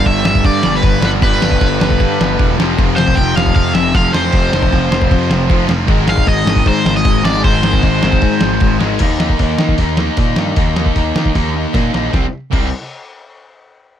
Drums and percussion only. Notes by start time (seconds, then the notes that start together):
0.06 kick, crash
0.25 snare
0.35 kick
0.44 kick, crash
0.63 snare
0.82 kick, crash
1.02 snare
1.22 kick, crash
1.42 snare
1.52 kick
1.61 kick, crash
1.81 snare
1.90 kick
2.00 kick, crash
2.21 snare
2.39 kick, crash
2.60 snare
2.79 kick, crash
2.98 snare
3.08 kick
3.17 kick, crash
3.37 snare
3.46 kick
3.56 kick, crash
3.75 snare
3.95 kick, crash
4.14 snare
4.32 kick, crash
4.53 snare
4.63 kick
4.73 kick, crash
4.92 snare
5.02 kick
5.11 kick, crash
5.31 snare
5.50 kick, crash
5.69 snare
5.88 kick, crash
6.08 snare
6.18 kick
6.27 kick, crash
6.47 snare
6.56 kick
6.66 kick, crash
6.86 snare
7.05 kick, crash
7.25 snare
7.44 kick, crash
7.63 snare
7.73 kick
7.83 kick, crash
8.03 snare
8.12 kick
8.22 kick, crash
8.41 snare
8.60 kick, crash
8.81 snare
8.99 kick, open hi-hat, crash
9.20 snare
9.30 kick
9.39 kick, open hi-hat
9.58 snare
9.69 kick
9.78 kick, open hi-hat
9.97 snare
10.17 kick, open hi-hat
10.36 snare
10.56 kick, open hi-hat
10.76 snare
10.86 kick
10.96 kick, open hi-hat
11.16 snare
11.26 kick
11.35 kick, snare, open hi-hat
11.74 kick, snare, open hi-hat
11.94 snare
12.13 kick, snare
12.53 kick, crash